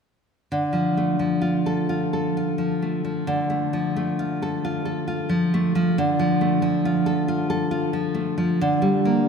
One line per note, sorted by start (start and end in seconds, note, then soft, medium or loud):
0.52 3.24 D3 soft
0.73 1.18 F3 soft
0.97 2.37 A3 soft
1.19 2.57 F3 soft
1.42 1.88 F4 soft
1.66 2.12 A4 soft
1.89 2.36 F4 soft
2.13 3.50 A4 soft
2.37 3.72 F4 soft
2.58 3.03 F3 soft
2.82 3.49 A3 soft
3.05 3.72 F3 soft
3.27 5.90 D3 medium
3.50 3.95 A3 soft
3.73 5.06 F3 soft
3.96 5.29 A3 soft
4.19 4.63 F4 soft
4.42 4.84 A4 soft
4.65 5.06 F4 soft
4.85 5.96 A4 soft
5.08 5.96 F4 soft
5.29 5.74 F3 soft
5.54 5.96 A3 soft
5.75 5.96 F3 soft
5.98 8.56 D3 medium
6.19 6.61 F3 medium
6.41 7.71 A3 soft
6.62 7.92 F3 soft
6.85 7.27 F4 medium
7.06 7.49 A4 medium
7.28 7.70 F4 medium
7.50 8.60 A4 medium
7.71 8.59 F4 medium
7.93 8.36 F3 soft
8.14 8.59 A3 soft
8.38 8.59 F3 soft
8.61 9.28 D3 medium
8.82 9.28 G3 soft
9.05 9.28 A#3 soft